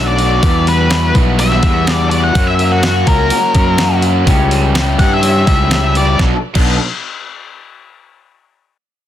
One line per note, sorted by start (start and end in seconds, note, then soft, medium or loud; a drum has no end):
0.00 0.39 B1 medium
0.00 0.43 F#3 medium
0.00 0.41 A3 medium
0.00 0.19 D4 medium
0.00 0.43 D4 medium
0.00 0.17 F#4 medium
0.00 0.18 F#4 medium
0.08 0.66 D5 medium
0.17 0.42 D4 medium
0.17 0.45 F#4 medium
0.17 open hi-hat medium
0.42 1.11 E2 loud
0.42 1.62 E3 medium
0.42 0.88 G3 medium
0.42 0.89 B3 loud
0.42 0.90 E4 loud
0.42 0.91 F#4 loud
0.42 kick loud
0.42 open hi-hat medium
0.67 1.38 G3 medium
0.67 1.14 B4 medium
0.67 open hi-hat medium
0.89 1.36 G3 medium
0.89 1.15 B3 medium
0.89 1.14 E4 loud
0.89 1.13 F#4 loud
0.89 snare loud
0.89 open hi-hat medium
1.14 1.60 B1 medium
1.14 1.37 B3 medium
1.14 1.38 E4 medium
1.14 1.39 F#4 medium
1.14 kick medium
1.14 open hi-hat medium
1.37 1.85 G3 medium
1.37 1.86 B3 medium
1.37 1.87 E4 medium
1.37 1.87 F#4 medium
1.37 1.93 E5 loud
1.37 open hi-hat medium
1.52 snare soft
1.63 2.31 E2 medium
1.63 2.35 E3 medium
1.63 kick medium
1.63 open hi-hat medium
1.86 2.33 G3 medium
1.86 2.11 B3 medium
1.86 2.10 E4 medium
1.86 2.08 F#4 medium
1.86 snare loud
1.86 open hi-hat medium
1.93 2.09 D5 loud
2.09 2.34 B3 medium
2.09 2.34 E4 medium
2.09 2.33 F#4 medium
2.09 2.22 D5 medium
2.09 open hi-hat medium
2.24 2.47 F#5 medium
2.34 3.03 F#2 loud
2.34 3.54 F#3 medium
2.34 2.81 A#3 medium
2.34 2.83 C#4 loud
2.34 2.83 F#4 loud
2.34 kick loud
2.34 open hi-hat medium
2.47 2.70 E5 medium
2.59 3.30 A#3 medium
2.59 open hi-hat medium
2.72 3.07 F#4 medium
2.82 3.28 A#3 loud
2.82 3.08 C#4 medium
2.82 3.05 F#4 loud
2.82 snare loud
2.82 open hi-hat medium
3.06 3.30 C#2 medium
3.06 3.30 C#4 medium
3.06 3.31 F#4 medium
3.06 4.01 A#4 loud
3.06 kick medium
3.06 open hi-hat medium
3.30 3.76 A#3 medium
3.30 3.78 C#4 medium
3.30 3.79 F#4 medium
3.30 open hi-hat medium
3.55 4.23 F#2 medium
3.55 4.26 F#3 medium
3.55 kick medium
3.55 open hi-hat medium
3.77 4.25 A#3 medium
3.77 4.03 C#4 medium
3.77 3.99 F#4 medium
3.77 snare loud
3.77 open hi-hat medium
4.00 4.25 C#4 medium
4.00 4.24 F#4 medium
4.00 open hi-hat medium
4.25 4.95 C#2 loud
4.25 5.45 C#3 medium
4.25 4.73 G3 medium
4.25 4.74 C#4 loud
4.25 4.75 E4 loud
4.25 4.76 G4 loud
4.25 kick loud
4.25 open hi-hat medium
4.51 5.21 G3 medium
4.51 open hi-hat medium
4.74 5.21 G3 loud
4.74 4.99 E4 medium
4.74 4.97 G4 loud
4.74 snare loud
4.74 open hi-hat medium
4.98 5.43 G2 medium
4.98 5.22 C#4 medium
4.98 5.23 E4 medium
4.98 5.24 G4 medium
4.98 5.11 F#5 medium
4.98 kick medium
4.98 open hi-hat medium
5.14 5.94 E5 medium
5.22 5.69 G3 medium
5.22 5.70 C#4 medium
5.22 5.71 E4 medium
5.22 5.71 G4 medium
5.22 open hi-hat medium
5.47 6.15 C#2 medium
5.47 6.18 C#3 medium
5.47 kick medium
5.47 open hi-hat medium
5.70 6.17 G3 medium
5.70 5.96 C#4 medium
5.70 5.95 E4 medium
5.70 5.93 G4 medium
5.70 snare loud
5.70 open hi-hat medium
5.95 6.19 C#4 medium
5.95 6.18 E4 medium
5.95 6.17 G4 medium
5.95 6.19 D5 medium
5.95 open hi-hat medium
6.18 6.33 B1 loud
6.18 6.33 B2 medium
6.18 6.33 F#3 medium
6.18 6.34 B3 loud
6.18 6.34 D4 loud
6.18 6.34 A4 medium
6.18 kick loud
6.18 snare medium
6.54 6.78 B1 medium
6.54 6.74 B2 medium
6.54 6.74 F#3 medium
6.54 6.75 B3 loud
6.54 6.75 D4 loud
6.54 6.75 A4 loud
6.54 kick loud
6.54 crash medium